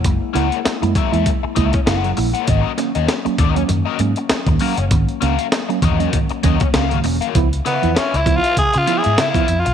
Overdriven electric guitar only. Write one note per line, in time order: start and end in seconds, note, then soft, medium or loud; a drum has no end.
0.34 0.57 C#4 medium
0.34 0.57 G#4 medium
0.34 0.57 A#4 medium
0.34 0.57 F#5 medium
0.65 muted overdriven electric guitar stroke soft
0.82 muted overdriven electric guitar stroke soft
0.96 1.13 C#4 medium
0.96 1.12 G#4 medium
0.96 1.12 A#4 medium
0.96 1.11 E5 medium
1.12 1.28 C#4 soft
1.12 1.28 G#4 medium
1.12 1.28 A#4 medium
1.12 1.27 E5 medium
1.43 muted overdriven electric guitar stroke soft
1.55 1.78 C#4 medium
1.55 1.73 G#4 medium
1.55 1.72 A#4 medium
1.55 1.72 E5 medium
1.73 muted overdriven electric guitar stroke soft
1.86 2.09 C#4 medium
1.86 2.09 G#4 medium
1.86 2.09 A#4 medium
1.86 2.10 F#5 medium
2.17 muted overdriven electric guitar stroke soft
2.34 2.46 C#4 medium
2.34 2.48 G#4 medium
2.34 2.47 A#4 medium
2.34 2.49 F#5 medium
2.47 2.70 C#4 medium
2.47 2.70 F#4 medium
2.47 2.70 A#4 medium
2.47 2.71 D#5 medium
2.78 muted overdriven electric guitar stroke soft
2.95 3.11 C#4 soft
2.95 3.11 F#4 soft
2.95 3.10 A#4 soft
2.95 3.10 D#5 medium
3.25 muted overdriven electric guitar stroke soft
3.39 3.61 C#4 medium
3.39 3.56 F#4 medium
3.39 3.55 A#4 medium
3.39 3.54 D#5 medium
3.56 muted overdriven electric guitar stroke soft
3.68 muted overdriven electric guitar stroke soft
3.85 3.99 C#4 medium
3.85 3.99 F#4 medium
3.85 4.00 A#4 medium
3.85 4.00 D#5 medium
4.00 muted overdriven electric guitar stroke soft
4.17 muted overdriven electric guitar stroke soft
4.31 muted overdriven electric guitar stroke soft
4.47 muted overdriven electric guitar stroke soft
4.61 4.83 C#4 medium
4.61 4.78 F#4 medium
4.61 4.78 A#4 medium
4.61 4.78 F5 medium
4.78 muted overdriven electric guitar stroke soft
5.21 5.44 C#4 medium
5.21 5.44 F#4 medium
5.21 5.45 A#4 medium
5.21 5.45 F5 loud
5.52 muted overdriven electric guitar stroke soft
5.69 muted overdriven electric guitar stroke soft
5.83 6.00 C#4 medium
5.83 6.00 F#4 medium
5.83 5.99 A#4 medium
5.83 5.99 D#5 medium
6.00 6.15 C#4 soft
6.00 6.15 F#4 medium
6.00 6.15 A#4 medium
6.00 6.15 D#5 medium
6.30 muted overdriven electric guitar stroke soft
6.43 6.66 C#4 medium
6.43 6.61 F#4 medium
6.43 6.61 A#4 medium
6.43 6.60 D#5 loud
6.61 muted overdriven electric guitar stroke soft
6.74 6.96 C#4 medium
6.74 6.97 F#4 medium
6.74 6.97 A#4 loud
6.74 6.97 F5 loud
7.04 muted overdriven electric guitar stroke soft
7.21 7.37 C#4 medium
7.21 7.37 F#4 medium
7.21 7.36 A#4 medium
7.21 7.36 F5 medium
7.65 7.88 C#4 medium
7.65 7.88 F4 medium
7.65 7.88 B4 medium
7.65 7.89 E5 medium
7.95 8.18 C#4 medium
7.95 8.18 F4 medium
7.95 8.18 B4 medium
7.95 8.19 E5 medium
8.26 muted overdriven electric guitar stroke soft
8.43 8.56 C#4 soft
8.43 8.56 F4 medium
8.43 8.57 B4 medium
8.43 8.57 E5 medium
8.57 muted overdriven electric guitar stroke medium
8.73 muted overdriven electric guitar stroke soft
8.86 9.04 C#4 medium
8.86 9.04 F4 medium
8.86 9.03 B4 medium
8.86 9.03 E5 medium
9.04 9.16 C#4 medium
9.04 9.17 F4 medium
9.04 9.17 B4 medium
9.04 9.19 E5 medium
9.17 9.29 C4 medium
9.17 9.30 E4 medium
9.17 9.30 A#4 medium
9.17 9.31 E5 loud
9.29 9.46 C#4 medium
9.29 9.46 F4 medium
9.29 9.46 B4 medium
9.29 9.47 F5 loud
9.48 muted overdriven electric guitar stroke soft
9.65 muted overdriven electric guitar stroke medium